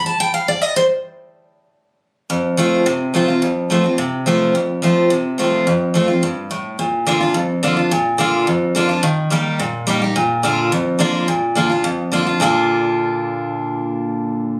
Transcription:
\new Staff \with { instrumentName = "Steel-string acoustic guitar" } { \time 4/4 \key bes \major \tempo 4 = 214 << { a''8 g''8 f''8 d''8 ees''8 c''8 r4 | r1 | r4 <f a c' f'>4 r4 <f a c' f'>8 <c' f'>8 | r4 <f a c' f'>8 <c' f'>8 r4 <f a c' f'>4 |
r4 <f a c' f'>4 r4 <f a c' f'>4 | r4 <f a c' f'>8 <c' f'>8 r2 | r4 <d bes d' f'>8 <d' f'>8 r4 <d bes d' f'>8 <d' f'>8 | r4 <d bes d' f'>4 r4 <d bes d' f'>8 <d' f'>8 |
r4 <g bes ees' g'>4 r4 <g bes ees' g'>8 <ees' g'>8 | r4 <d bes d' f'>4 r4 <d bes d' f'>4 | r4 <d bes d' f'>8 <d' f'>8 r4 <d bes d' f'>8 <d' f'>8 | <bes, d bes d' f'>1~ |
<bes, d bes d' f'>1 | } \\ { r1 | r1 | f,2 c2 | f,2 c2 |
f,2 c2 | f,2 g,4 a,4 | bes,2 f,2 | bes,2 f,2 |
ees2 bes,2 | bes,2 f,2 | bes,2 f,2 | r1 |
r1 | } >> }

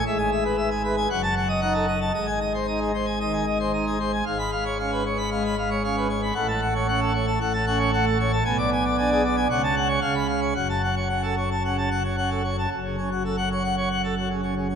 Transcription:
<<
  \new Staff \with { instrumentName = "Pipe organ" } { \time 4/4 \key gis \phrygian \tempo 4 = 114 << { e''16 gis''16 e''16 b'16 e''16 gis'16 b'16 gis''16 fis''16 a''16 fis''16 dis''16 fis''16 a'16 dis''16 a''16 | dis''16 gis''16 dis''16 bis'16 dis''16 gis'16 bis'16 gis''16 dis''16 gis''16 dis''16 bis'16 dis''16 gis'16 bis'16 gis''16 | \key fis \minor eis''16 b''16 eis''16 cis''16 eis''16 b'16 cis''16 b''16 eis''16 b''16 eis''16 cis''16 eis''16 b'16 cis''16 b''16 | fis''16 a''16 fis''16 cis''16 fis''16 a'16 cis''16 a''16 fis''16 a''16 fis''16 cis''16 fis''16 a'16 cis''16 a''16 |
gis''16 d''16 gis''16 d''16 gis''16 gis'16 d''16 gis''16 fis''16 a''16 fis''16 cis''16 eis''16 b''16 eis''16 cis''16 | fis''16 a''16 fis''16 cis''16 fis''16 a'16 cis''16 a''16 fis''16 a''16 fis''16 cis''16 fis''16 a'16 cis''16 a''16 | r4 r16 fis''16 r2 r8 | } \\ { gis,2 fis,4 dis'8 r8 | gis,4 dis'8 r8 dis8 r8 dis'8 r8 | gis,4 cis'8 r8 gis8 r8 cis'8 r8 | a,4 cis'8 r8 a,8 cis'8 a8 r8 |
b,4 d'8 r8 cis4 cis4 | fis,4 cis'8 r8 cis8 r8 cis'8 r8 | fis,16 cis16 cis'16 fis'16 a'16 r16 cis''16 fis''16 cis''16 fis''16 a'16 fis'16 cis16 cis'16 cis16 cis'16 | } >> }
  \new Staff \with { instrumentName = "Pipe organ" } { \clef bass \time 4/4 \key gis \phrygian gis,,2 fis,,2 | gis,,1 | \key fis \minor gis,,1 | a,,2 a,,2 |
b,,2 cis,4 cis,4 | fis,,1 | fis,,1 | }
>>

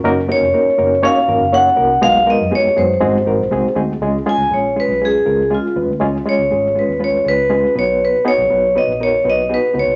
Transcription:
<<
  \new Staff \with { instrumentName = "Vibraphone" } { \time 4/4 \key des \mixolydian \tempo 4 = 120 r8 des''4. f''4 ges''4 | f''8 ees''8 des''8 c''2 r8 | r8 aes''8 des''8 ces''8 aes'4 f'8 r8 | r8 des''4 ces''8 des''8 ces''4 des''8 |
ces''8 des''4 ees''8 des''8 ees''8 ces''8 des''8 | }
  \new Staff \with { instrumentName = "Reed electric piano" } { \time 4/4 \key des \mixolydian <bes des' ees' ges' bes'>8 <bes des' ees' ges' bes'>8 <bes des' ees' ges' bes'>8 <bes des' ees' ges' bes'>8 <bes des' ees' ges' des''>8 <bes des' ees' ges' bes'>8 <bes des' ees' ges' des''>8 <bes des' ees' ges' bes'>8 | <aes ces' ees' ges' aes'>8 <aes ces' ees' ges' bes'>8 <aes ces' ees' ges' aes'>8 <aes ces' ees' ges' aes'>8 <aes c' ees' ges' aes'>8 <aes c' ees' ges' bes'>8 <aes c' ees' ges' aes'>8 <aes c' ees' ges' aes'>8 | <aes des' f' aes'>8 <aes des' f' aes'>8 <aes des' f' aes'>8 <aes des' f' aes'>8 <aes des' f' aes'>8 <aes des' f' bes'>8 <aes des' f' aes'>8 <aes des' f' ces''>8 | <aes des' f' aes'>8 <aes des' f' aes'>8 <aes des' f' aes'>8 <aes des' f' aes'>8 <aes des' f' ces''>8 <aes des' f' aes'>8 <aes des' f' aes'>8 <ces' ees' ges' ces''>8~ |
<ces' ees' ges' ces''>8 <ces' ees' ges' aes'>8 <ces' ees' ges' ces''>8 <ces' ees' ges' ces''>8 <ces' ees' ges' bes'>8 <ces' ees' ges' ces''>8 <ces' ees' ges' aes'>8 <ces' ees' ges' ces''>8 | }
  \new Staff \with { instrumentName = "Fingered electric bass" } { \clef bass \time 4/4 \key des \mixolydian ges,,8. f,,16 r8 ges,,8. r16 aes,,16 ges,,8. c,8 | ces,8. ges,16 r8 ges,8 aes,,16 aes,16 aes,,16 bes,,16 c,16 r16 d,8 | des,8 r16 des,16 bes,,8. ces,8. des,8. r16 ees,16 d,16 | des,8 r16 des,16 aes,,8. ees,8. des,4 ces,8~ |
ces,8 r16 ces,16 ces,8. bes,,8. ces,8. r16 des,16 c,16 | }
>>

